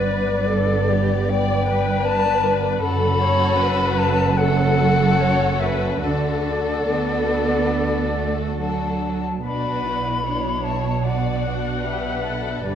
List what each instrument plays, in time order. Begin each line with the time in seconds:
Already playing: double bass section G1, cello section G2, violin section B3 B4 D5, viola section B4, flute D5
0.49 viola section A4
0.89 viola section G4
1.30 viola section D5, flute G5
1.69 viola section B4
2.05 flute A5
2.80 double bass section F#1, cello section F#2, violin section C#4 F#4 A4, viola section A4, flute B5
3.21 viola section C#5
3.59 viola section B4
3.98 flute A5
4.36 violin section C#4 F#4 A4, viola section A4, flute F#5
5.19 viola section C#5
5.60 viola section B4, flute E5
6.02 double bass section D2, cello section D3, violin section D4 F#4 A4, viola section A4, flute D5
6.85 cello section B3
8.15 cello section A3
8.60 cello section F#3, violin section D4 F#4 A4, flute A5
9.44 double bass section B1, cello section B2, violin section D4 F#4 D5, viola section B4, flute B5
9.86 violin section E4
10.25 viola section D4, violin section E4 C#5
10.64 viola section C#5, violin section C#5, flute A5
11.05 violin section D4 F#4 D5, viola section D5, flute F#5
11.45 viola section F#5
11.84 violin section G4 B4, flute E5
12.24 violin section A4
12.62 double bass section G1, cello section G2, violin section D4 B4, viola section G4, flute D5